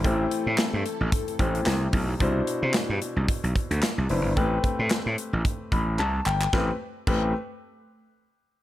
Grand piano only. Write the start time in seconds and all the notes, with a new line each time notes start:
0.04 A3 E4 G4 C5
1.39 A3 E4 G4 C5
2.20 B2 D4 E4 C5
4.10 B3 D4 E4 C5
4.36 A3 C4 G4 B4
5.72 B5
5.99 A5
6.26 G5
6.53 A3 C4 G4 B4
7.07 A3 C4 G4 B4